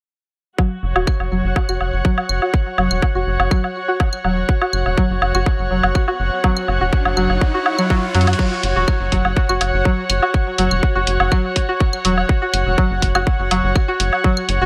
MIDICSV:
0, 0, Header, 1, 6, 480
1, 0, Start_track
1, 0, Tempo, 487805
1, 576, Time_signature, 4, 2, 24, 8
1, 14422, End_track
2, 0, Start_track
2, 0, Title_t, "String section"
2, 0, Program_c, 0, 48
2, 578, Note_on_c, 0, 66, 80
2, 866, Note_on_c, 0, 73, 86
2, 1413, Note_on_c, 0, 78, 79
2, 14422, Note_off_c, 0, 66, 0
2, 14422, Note_off_c, 0, 73, 0
2, 14422, Note_off_c, 0, 78, 0
2, 14422, End_track
3, 0, Start_track
3, 0, Title_t, "Synth pluck"
3, 0, Program_c, 1, 84
3, 575, Note_on_c, 1, 54, 83
3, 625, Note_off_c, 1, 54, 0
3, 940, Note_on_c, 1, 66, 75
3, 986, Note_off_c, 1, 66, 0
3, 1296, Note_on_c, 1, 54, 76
3, 1346, Note_off_c, 1, 54, 0
3, 1661, Note_on_c, 1, 66, 73
3, 1707, Note_off_c, 1, 66, 0
3, 2016, Note_on_c, 1, 54, 78
3, 2066, Note_off_c, 1, 54, 0
3, 2381, Note_on_c, 1, 66, 71
3, 2427, Note_off_c, 1, 66, 0
3, 2736, Note_on_c, 1, 54, 70
3, 2786, Note_off_c, 1, 54, 0
3, 3102, Note_on_c, 1, 66, 79
3, 3147, Note_off_c, 1, 66, 0
3, 3456, Note_on_c, 1, 54, 81
3, 3506, Note_off_c, 1, 54, 0
3, 3820, Note_on_c, 1, 66, 75
3, 3866, Note_off_c, 1, 66, 0
3, 4175, Note_on_c, 1, 54, 76
3, 4225, Note_off_c, 1, 54, 0
3, 4541, Note_on_c, 1, 66, 77
3, 4587, Note_off_c, 1, 66, 0
3, 4895, Note_on_c, 1, 54, 80
3, 4946, Note_off_c, 1, 54, 0
3, 5261, Note_on_c, 1, 66, 77
3, 5307, Note_off_c, 1, 66, 0
3, 5616, Note_on_c, 1, 54, 73
3, 5666, Note_off_c, 1, 54, 0
3, 5980, Note_on_c, 1, 66, 75
3, 6027, Note_off_c, 1, 66, 0
3, 6336, Note_on_c, 1, 54, 84
3, 6386, Note_off_c, 1, 54, 0
3, 6701, Note_on_c, 1, 66, 78
3, 6747, Note_off_c, 1, 66, 0
3, 7055, Note_on_c, 1, 54, 77
3, 7105, Note_off_c, 1, 54, 0
3, 7421, Note_on_c, 1, 66, 77
3, 7467, Note_off_c, 1, 66, 0
3, 7661, Note_on_c, 1, 54, 79
3, 7707, Note_off_c, 1, 54, 0
3, 7775, Note_on_c, 1, 54, 106
3, 7851, Note_off_c, 1, 54, 0
3, 8015, Note_on_c, 1, 54, 103
3, 8065, Note_off_c, 1, 54, 0
3, 8140, Note_on_c, 1, 54, 74
3, 8186, Note_off_c, 1, 54, 0
3, 8255, Note_on_c, 1, 54, 81
3, 8305, Note_off_c, 1, 54, 0
3, 8620, Note_on_c, 1, 66, 75
3, 8666, Note_off_c, 1, 66, 0
3, 8974, Note_on_c, 1, 54, 77
3, 9025, Note_off_c, 1, 54, 0
3, 9340, Note_on_c, 1, 66, 78
3, 9386, Note_off_c, 1, 66, 0
3, 9694, Note_on_c, 1, 54, 83
3, 9745, Note_off_c, 1, 54, 0
3, 10060, Note_on_c, 1, 66, 74
3, 10106, Note_off_c, 1, 66, 0
3, 10415, Note_on_c, 1, 54, 75
3, 10465, Note_off_c, 1, 54, 0
3, 10779, Note_on_c, 1, 66, 75
3, 10826, Note_off_c, 1, 66, 0
3, 11134, Note_on_c, 1, 54, 86
3, 11185, Note_off_c, 1, 54, 0
3, 11500, Note_on_c, 1, 66, 75
3, 11547, Note_off_c, 1, 66, 0
3, 11855, Note_on_c, 1, 54, 81
3, 11905, Note_off_c, 1, 54, 0
3, 12220, Note_on_c, 1, 66, 77
3, 12266, Note_off_c, 1, 66, 0
3, 12576, Note_on_c, 1, 54, 80
3, 12626, Note_off_c, 1, 54, 0
3, 12941, Note_on_c, 1, 66, 76
3, 12987, Note_off_c, 1, 66, 0
3, 13295, Note_on_c, 1, 54, 79
3, 13345, Note_off_c, 1, 54, 0
3, 13660, Note_on_c, 1, 66, 75
3, 13707, Note_off_c, 1, 66, 0
3, 14015, Note_on_c, 1, 54, 79
3, 14065, Note_off_c, 1, 54, 0
3, 14381, Note_on_c, 1, 66, 77
3, 14422, Note_off_c, 1, 66, 0
3, 14422, End_track
4, 0, Start_track
4, 0, Title_t, "Analog synth bass"
4, 0, Program_c, 2, 38
4, 815, Note_on_c, 2, 30, 99
4, 916, Note_off_c, 2, 30, 0
4, 940, Note_on_c, 2, 28, 88
4, 1033, Note_off_c, 2, 28, 0
4, 1180, Note_on_c, 2, 30, 90
4, 1273, Note_off_c, 2, 30, 0
4, 1295, Note_on_c, 2, 30, 95
4, 1396, Note_off_c, 2, 30, 0
4, 1421, Note_on_c, 2, 30, 101
4, 1513, Note_off_c, 2, 30, 0
4, 1661, Note_on_c, 2, 30, 85
4, 1753, Note_off_c, 2, 30, 0
4, 1777, Note_on_c, 2, 30, 77
4, 1877, Note_off_c, 2, 30, 0
4, 1902, Note_on_c, 2, 30, 84
4, 1994, Note_off_c, 2, 30, 0
4, 2256, Note_on_c, 2, 30, 89
4, 2357, Note_off_c, 2, 30, 0
4, 2736, Note_on_c, 2, 30, 96
4, 2837, Note_off_c, 2, 30, 0
4, 2862, Note_on_c, 2, 28, 87
4, 2954, Note_off_c, 2, 28, 0
4, 3101, Note_on_c, 2, 30, 94
4, 3193, Note_off_c, 2, 30, 0
4, 3216, Note_on_c, 2, 30, 100
4, 3317, Note_off_c, 2, 30, 0
4, 3340, Note_on_c, 2, 30, 106
4, 3433, Note_off_c, 2, 30, 0
4, 4176, Note_on_c, 2, 28, 82
4, 4371, Note_off_c, 2, 28, 0
4, 4655, Note_on_c, 2, 30, 97
4, 4756, Note_off_c, 2, 30, 0
4, 4780, Note_on_c, 2, 28, 85
4, 4873, Note_off_c, 2, 28, 0
4, 5020, Note_on_c, 2, 30, 99
4, 5113, Note_off_c, 2, 30, 0
4, 5134, Note_on_c, 2, 30, 100
4, 5236, Note_off_c, 2, 30, 0
4, 5260, Note_on_c, 2, 30, 103
4, 5353, Note_off_c, 2, 30, 0
4, 5500, Note_on_c, 2, 30, 86
4, 5593, Note_off_c, 2, 30, 0
4, 5615, Note_on_c, 2, 30, 74
4, 5716, Note_off_c, 2, 30, 0
4, 5741, Note_on_c, 2, 30, 83
4, 5833, Note_off_c, 2, 30, 0
4, 6096, Note_on_c, 2, 30, 93
4, 6197, Note_off_c, 2, 30, 0
4, 6575, Note_on_c, 2, 30, 97
4, 6676, Note_off_c, 2, 30, 0
4, 6701, Note_on_c, 2, 28, 85
4, 6793, Note_off_c, 2, 28, 0
4, 6941, Note_on_c, 2, 30, 96
4, 7033, Note_off_c, 2, 30, 0
4, 7056, Note_on_c, 2, 30, 99
4, 7157, Note_off_c, 2, 30, 0
4, 7180, Note_on_c, 2, 30, 98
4, 7273, Note_off_c, 2, 30, 0
4, 8015, Note_on_c, 2, 42, 83
4, 8211, Note_off_c, 2, 42, 0
4, 8495, Note_on_c, 2, 30, 101
4, 8596, Note_off_c, 2, 30, 0
4, 8619, Note_on_c, 2, 28, 89
4, 8712, Note_off_c, 2, 28, 0
4, 8860, Note_on_c, 2, 30, 97
4, 8953, Note_off_c, 2, 30, 0
4, 8976, Note_on_c, 2, 30, 102
4, 9077, Note_off_c, 2, 30, 0
4, 9101, Note_on_c, 2, 30, 103
4, 9193, Note_off_c, 2, 30, 0
4, 9341, Note_on_c, 2, 30, 87
4, 9433, Note_off_c, 2, 30, 0
4, 9456, Note_on_c, 2, 30, 78
4, 9557, Note_off_c, 2, 30, 0
4, 9581, Note_on_c, 2, 30, 87
4, 9673, Note_off_c, 2, 30, 0
4, 9936, Note_on_c, 2, 30, 95
4, 10037, Note_off_c, 2, 30, 0
4, 10416, Note_on_c, 2, 30, 100
4, 10517, Note_off_c, 2, 30, 0
4, 10541, Note_on_c, 2, 28, 91
4, 10633, Note_off_c, 2, 28, 0
4, 10781, Note_on_c, 2, 30, 97
4, 10873, Note_off_c, 2, 30, 0
4, 10896, Note_on_c, 2, 30, 100
4, 10997, Note_off_c, 2, 30, 0
4, 11021, Note_on_c, 2, 30, 98
4, 11113, Note_off_c, 2, 30, 0
4, 11855, Note_on_c, 2, 28, 78
4, 12051, Note_off_c, 2, 28, 0
4, 12334, Note_on_c, 2, 30, 95
4, 12436, Note_off_c, 2, 30, 0
4, 12460, Note_on_c, 2, 28, 85
4, 12553, Note_off_c, 2, 28, 0
4, 12699, Note_on_c, 2, 30, 95
4, 12792, Note_off_c, 2, 30, 0
4, 12815, Note_on_c, 2, 30, 98
4, 12916, Note_off_c, 2, 30, 0
4, 12940, Note_on_c, 2, 30, 107
4, 13033, Note_off_c, 2, 30, 0
4, 13180, Note_on_c, 2, 30, 85
4, 13273, Note_off_c, 2, 30, 0
4, 13294, Note_on_c, 2, 30, 76
4, 13396, Note_off_c, 2, 30, 0
4, 13420, Note_on_c, 2, 30, 88
4, 13513, Note_off_c, 2, 30, 0
4, 13775, Note_on_c, 2, 30, 96
4, 13876, Note_off_c, 2, 30, 0
4, 14255, Note_on_c, 2, 30, 102
4, 14356, Note_off_c, 2, 30, 0
4, 14379, Note_on_c, 2, 28, 87
4, 14422, Note_off_c, 2, 28, 0
4, 14422, End_track
5, 0, Start_track
5, 0, Title_t, "Riser"
5, 0, Program_c, 3, 103
5, 4416, Note_on_c, 3, 60, 77
5, 8256, Note_off_c, 3, 60, 0
5, 14422, End_track
6, 0, Start_track
6, 0, Title_t, "Drums"
6, 575, Note_on_c, 9, 36, 107
6, 576, Note_on_c, 9, 77, 47
6, 673, Note_off_c, 9, 36, 0
6, 674, Note_off_c, 9, 77, 0
6, 942, Note_on_c, 9, 77, 70
6, 1040, Note_off_c, 9, 77, 0
6, 1055, Note_on_c, 9, 36, 115
6, 1057, Note_on_c, 9, 75, 66
6, 1154, Note_off_c, 9, 36, 0
6, 1155, Note_off_c, 9, 75, 0
6, 1182, Note_on_c, 9, 77, 41
6, 1280, Note_off_c, 9, 77, 0
6, 1535, Note_on_c, 9, 36, 118
6, 1537, Note_on_c, 9, 77, 74
6, 1634, Note_off_c, 9, 36, 0
6, 1635, Note_off_c, 9, 77, 0
6, 1662, Note_on_c, 9, 75, 66
6, 1761, Note_off_c, 9, 75, 0
6, 1777, Note_on_c, 9, 77, 42
6, 1875, Note_off_c, 9, 77, 0
6, 2015, Note_on_c, 9, 36, 117
6, 2114, Note_off_c, 9, 36, 0
6, 2142, Note_on_c, 9, 77, 69
6, 2241, Note_off_c, 9, 77, 0
6, 2257, Note_on_c, 9, 75, 62
6, 2355, Note_off_c, 9, 75, 0
6, 2382, Note_on_c, 9, 77, 45
6, 2480, Note_off_c, 9, 77, 0
6, 2496, Note_on_c, 9, 36, 125
6, 2594, Note_off_c, 9, 36, 0
6, 2737, Note_on_c, 9, 77, 74
6, 2835, Note_off_c, 9, 77, 0
6, 2862, Note_on_c, 9, 75, 63
6, 2961, Note_off_c, 9, 75, 0
6, 2976, Note_on_c, 9, 36, 115
6, 2978, Note_on_c, 9, 77, 43
6, 3074, Note_off_c, 9, 36, 0
6, 3076, Note_off_c, 9, 77, 0
6, 3342, Note_on_c, 9, 77, 75
6, 3441, Note_off_c, 9, 77, 0
6, 3456, Note_on_c, 9, 36, 123
6, 3457, Note_on_c, 9, 75, 66
6, 3554, Note_off_c, 9, 36, 0
6, 3555, Note_off_c, 9, 75, 0
6, 3582, Note_on_c, 9, 77, 45
6, 3680, Note_off_c, 9, 77, 0
6, 3936, Note_on_c, 9, 36, 120
6, 3937, Note_on_c, 9, 77, 76
6, 4034, Note_off_c, 9, 36, 0
6, 4035, Note_off_c, 9, 77, 0
6, 4062, Note_on_c, 9, 75, 61
6, 4160, Note_off_c, 9, 75, 0
6, 4177, Note_on_c, 9, 77, 43
6, 4276, Note_off_c, 9, 77, 0
6, 4416, Note_on_c, 9, 36, 120
6, 4514, Note_off_c, 9, 36, 0
6, 4542, Note_on_c, 9, 77, 85
6, 4640, Note_off_c, 9, 77, 0
6, 4657, Note_on_c, 9, 75, 61
6, 4755, Note_off_c, 9, 75, 0
6, 4782, Note_on_c, 9, 77, 45
6, 4881, Note_off_c, 9, 77, 0
6, 4896, Note_on_c, 9, 36, 117
6, 4994, Note_off_c, 9, 36, 0
6, 5136, Note_on_c, 9, 77, 81
6, 5235, Note_off_c, 9, 77, 0
6, 5262, Note_on_c, 9, 75, 59
6, 5360, Note_off_c, 9, 75, 0
6, 5375, Note_on_c, 9, 36, 121
6, 5376, Note_on_c, 9, 77, 44
6, 5474, Note_off_c, 9, 36, 0
6, 5475, Note_off_c, 9, 77, 0
6, 5741, Note_on_c, 9, 77, 81
6, 5840, Note_off_c, 9, 77, 0
6, 5855, Note_on_c, 9, 36, 125
6, 5856, Note_on_c, 9, 75, 56
6, 5954, Note_off_c, 9, 36, 0
6, 5954, Note_off_c, 9, 75, 0
6, 5981, Note_on_c, 9, 77, 44
6, 6079, Note_off_c, 9, 77, 0
6, 6336, Note_on_c, 9, 36, 121
6, 6336, Note_on_c, 9, 77, 82
6, 6434, Note_off_c, 9, 36, 0
6, 6435, Note_off_c, 9, 77, 0
6, 6461, Note_on_c, 9, 75, 64
6, 6560, Note_off_c, 9, 75, 0
6, 6576, Note_on_c, 9, 77, 44
6, 6674, Note_off_c, 9, 77, 0
6, 6815, Note_on_c, 9, 36, 119
6, 6914, Note_off_c, 9, 36, 0
6, 6941, Note_on_c, 9, 77, 78
6, 7040, Note_off_c, 9, 77, 0
6, 7056, Note_on_c, 9, 75, 58
6, 7154, Note_off_c, 9, 75, 0
6, 7182, Note_on_c, 9, 77, 43
6, 7280, Note_off_c, 9, 77, 0
6, 7295, Note_on_c, 9, 36, 126
6, 7394, Note_off_c, 9, 36, 0
6, 7536, Note_on_c, 9, 77, 78
6, 7634, Note_off_c, 9, 77, 0
6, 7661, Note_on_c, 9, 75, 60
6, 7760, Note_off_c, 9, 75, 0
6, 7775, Note_on_c, 9, 36, 121
6, 7776, Note_on_c, 9, 77, 43
6, 7874, Note_off_c, 9, 36, 0
6, 7875, Note_off_c, 9, 77, 0
6, 8015, Note_on_c, 9, 42, 54
6, 8078, Note_off_c, 9, 42, 0
6, 8078, Note_on_c, 9, 42, 64
6, 8140, Note_off_c, 9, 42, 0
6, 8140, Note_on_c, 9, 42, 68
6, 8142, Note_on_c, 9, 77, 85
6, 8197, Note_off_c, 9, 42, 0
6, 8197, Note_on_c, 9, 42, 75
6, 8240, Note_off_c, 9, 77, 0
6, 8255, Note_on_c, 9, 36, 120
6, 8255, Note_on_c, 9, 49, 93
6, 8296, Note_off_c, 9, 42, 0
6, 8353, Note_off_c, 9, 49, 0
6, 8354, Note_off_c, 9, 36, 0
6, 8496, Note_on_c, 9, 42, 88
6, 8594, Note_off_c, 9, 42, 0
6, 8735, Note_on_c, 9, 36, 117
6, 8736, Note_on_c, 9, 75, 68
6, 8834, Note_off_c, 9, 36, 0
6, 8834, Note_off_c, 9, 75, 0
6, 8975, Note_on_c, 9, 36, 58
6, 8975, Note_on_c, 9, 42, 91
6, 9073, Note_off_c, 9, 42, 0
6, 9074, Note_off_c, 9, 36, 0
6, 9101, Note_on_c, 9, 77, 71
6, 9200, Note_off_c, 9, 77, 0
6, 9215, Note_on_c, 9, 36, 124
6, 9314, Note_off_c, 9, 36, 0
6, 9342, Note_on_c, 9, 75, 70
6, 9440, Note_off_c, 9, 75, 0
6, 9455, Note_on_c, 9, 42, 89
6, 9457, Note_on_c, 9, 77, 55
6, 9553, Note_off_c, 9, 42, 0
6, 9556, Note_off_c, 9, 77, 0
6, 9695, Note_on_c, 9, 36, 119
6, 9794, Note_off_c, 9, 36, 0
6, 9934, Note_on_c, 9, 42, 91
6, 9936, Note_on_c, 9, 75, 71
6, 10033, Note_off_c, 9, 42, 0
6, 10035, Note_off_c, 9, 75, 0
6, 10061, Note_on_c, 9, 77, 56
6, 10160, Note_off_c, 9, 77, 0
6, 10175, Note_on_c, 9, 36, 120
6, 10274, Note_off_c, 9, 36, 0
6, 10414, Note_on_c, 9, 42, 86
6, 10513, Note_off_c, 9, 42, 0
6, 10541, Note_on_c, 9, 75, 63
6, 10640, Note_off_c, 9, 75, 0
6, 10656, Note_on_c, 9, 36, 114
6, 10754, Note_off_c, 9, 36, 0
6, 10894, Note_on_c, 9, 42, 93
6, 10993, Note_off_c, 9, 42, 0
6, 11021, Note_on_c, 9, 77, 81
6, 11119, Note_off_c, 9, 77, 0
6, 11136, Note_on_c, 9, 36, 127
6, 11136, Note_on_c, 9, 75, 68
6, 11234, Note_off_c, 9, 36, 0
6, 11234, Note_off_c, 9, 75, 0
6, 11374, Note_on_c, 9, 42, 100
6, 11376, Note_on_c, 9, 36, 65
6, 11473, Note_off_c, 9, 42, 0
6, 11474, Note_off_c, 9, 36, 0
6, 11615, Note_on_c, 9, 36, 127
6, 11714, Note_off_c, 9, 36, 0
6, 11741, Note_on_c, 9, 75, 61
6, 11839, Note_off_c, 9, 75, 0
6, 11855, Note_on_c, 9, 42, 99
6, 11953, Note_off_c, 9, 42, 0
6, 11981, Note_on_c, 9, 77, 59
6, 12080, Note_off_c, 9, 77, 0
6, 12095, Note_on_c, 9, 36, 127
6, 12194, Note_off_c, 9, 36, 0
6, 12335, Note_on_c, 9, 42, 93
6, 12335, Note_on_c, 9, 75, 59
6, 12434, Note_off_c, 9, 42, 0
6, 12434, Note_off_c, 9, 75, 0
6, 12575, Note_on_c, 9, 36, 123
6, 12673, Note_off_c, 9, 36, 0
6, 12815, Note_on_c, 9, 36, 62
6, 12815, Note_on_c, 9, 42, 98
6, 12913, Note_off_c, 9, 42, 0
6, 12914, Note_off_c, 9, 36, 0
6, 12941, Note_on_c, 9, 75, 65
6, 12941, Note_on_c, 9, 77, 76
6, 13039, Note_off_c, 9, 75, 0
6, 13039, Note_off_c, 9, 77, 0
6, 13055, Note_on_c, 9, 36, 124
6, 13154, Note_off_c, 9, 36, 0
6, 13295, Note_on_c, 9, 42, 99
6, 13296, Note_on_c, 9, 77, 56
6, 13394, Note_off_c, 9, 42, 0
6, 13394, Note_off_c, 9, 77, 0
6, 13535, Note_on_c, 9, 36, 127
6, 13536, Note_on_c, 9, 75, 58
6, 13634, Note_off_c, 9, 36, 0
6, 13634, Note_off_c, 9, 75, 0
6, 13775, Note_on_c, 9, 42, 97
6, 13873, Note_off_c, 9, 42, 0
6, 13901, Note_on_c, 9, 77, 60
6, 13999, Note_off_c, 9, 77, 0
6, 14015, Note_on_c, 9, 36, 119
6, 14113, Note_off_c, 9, 36, 0
6, 14141, Note_on_c, 9, 75, 63
6, 14239, Note_off_c, 9, 75, 0
6, 14255, Note_on_c, 9, 42, 87
6, 14353, Note_off_c, 9, 42, 0
6, 14422, End_track
0, 0, End_of_file